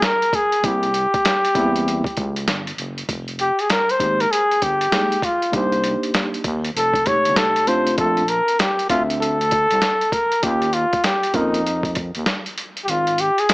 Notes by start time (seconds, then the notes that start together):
0.02 A#4, snare, closed hi-hat
0.22 closed hi-hat
0.33 G#4, kick, closed hi-hat
0.52 closed hi-hat
0.63 C2 G3 A#3 C4 E4 G4, kick, closed hi-hat
0.83 closed hi-hat
0.94 closed hi-hat
1.14 kick, closed hi-hat
1.25 snare, closed hi-hat
1.45 closed hi-hat
1.55 E2 G3 A#3 C4 E4, kick, closed hi-hat
1.76 closed hi-hat
1.88 closed hi-hat
2.04 kick, closed hi-hat
2.17 C#2, kick, closed hi-hat
2.36 closed hi-hat
2.47 G1, snare, closed hi-hat
2.67 closed hi-hat
2.78 F#1, closed hi-hat
2.98 closed hi-hat
3.08 F1, kick, closed hi-hat
3.28 closed hi-hat
3.39 G4, closed hi-hat
3.59 G#4, closed hi-hat
3.70 A#4, snare, closed hi-hat
3.89 C5, closed hi-hat
3.99 G#1 G#3 A#3 D#4 G4, kick, closed hi-hat
4.20 A#4, closed hi-hat
4.32 G#4, closed hi-hat
4.51 closed hi-hat
4.62 G1 G4, kick, closed hi-hat
4.81 closed hi-hat
4.92 G#3 A#3 D#4 G#4, snare, closed hi-hat
5.12 closed hi-hat
5.22 F4, kick, closed hi-hat
5.42 closed hi-hat
5.52 C2 A#3 D4 D#4 G4, kick, closed hi-hat
5.56 C5
5.72 closed hi-hat
5.84 closed hi-hat
6.03 closed hi-hat
6.14 snare, closed hi-hat
6.34 closed hi-hat
6.44 D#2, kick, closed hi-hat
6.64 closed hi-hat
6.74 F1 A4, closed hi-hat
6.94 kick, closed hi-hat
7.06 C3 G#3 D#4 G4 C#5, kick, closed hi-hat
7.12 A3
7.25 G1, closed hi-hat
7.36 A4, snare, closed hi-hat
7.56 closed hi-hat
7.67 A3 C4 D4 F4 C5, closed hi-hat
7.87 closed hi-hat
7.98 A#1 A3 C4 D4 F4 A4, kick, closed hi-hat
8.17 closed hi-hat
8.28 A#4, closed hi-hat
8.48 closed hi-hat
8.59 G4, snare, closed hi-hat
8.79 closed hi-hat
8.89 D2 A3 C4 D4 F4 E5, kick, closed hi-hat
9.10 closed hi-hat
9.21 A4, closed hi-hat
9.41 closed hi-hat
9.51 kick, closed hi-hat
9.71 C2, closed hi-hat
9.82 snare, closed hi-hat
10.01 closed hi-hat
10.12 A#4, kick, closed hi-hat
10.32 closed hi-hat
10.43 D#2 A#3 C#4 F4 G4, kick, closed hi-hat
10.62 closed hi-hat
10.73 F4, closed hi-hat
10.93 kick, closed hi-hat
11.04 G4, snare, closed hi-hat
11.23 closed hi-hat
11.34 F2 A#3 C#4 D#4 F4 A#4, kick, closed hi-hat
11.54 closed hi-hat
11.67 closed hi-hat
11.83 kick, closed hi-hat
11.95 kick, closed hi-hat
12.15 D#2, closed hi-hat
12.26 snare, closed hi-hat
12.46 closed hi-hat
12.58 closed hi-hat
12.77 closed hi-hat
12.84 G#1 G4, closed hi-hat
12.90 F4
13.07 closed hi-hat
13.18 G4, closed hi-hat
13.38 G#4, closed hi-hat
13.49 snare, closed hi-hat